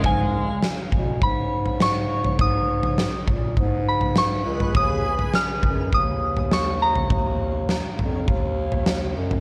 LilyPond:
<<
  \new Staff \with { instrumentName = "Synth bell" } { \time 4/4 \key gis \dorian \tempo 4 = 102 gis''2 b''4 cis'''4 | dis'''2 r8 b''8 cis'''4 | dis'''4 eis'''4 dis'''4 cis'''8 ais''8~ | ais''2~ ais''8 r4. | }
  \new Staff \with { instrumentName = "Bass clarinet" } { \clef bass \time 4/4 \key gis \dorian gis,4 r8 b,8 gis,2 | gis,4~ gis,16 r16 ais,8 gis,4. cis,8 | dis,4 r8 fis,8 dis,2 | dis,4~ dis,16 r16 eis,8 dis,4. fis,8 | }
  \new DrumStaff \with { instrumentName = "Drums" } \drummode { \time 4/4 <bd tomfh>4 sn8 <bd tomfh>8 <bd tomfh>8. tomfh16 sn8. tomfh16 | <bd tomfh>8. tomfh16 sn8 <bd tomfh>8 <bd tomfh>8. tomfh16 sn8. tomfh16 | <bd tomfh>8. tomfh16 sn8 <bd tomfh>8 <bd tomfh>8. tomfh16 sn8. tomfh16 | <bd tomfh>4 sn8 tomfh8 <bd tomfh>8. tomfh16 sn8. tomfh16 | }
>>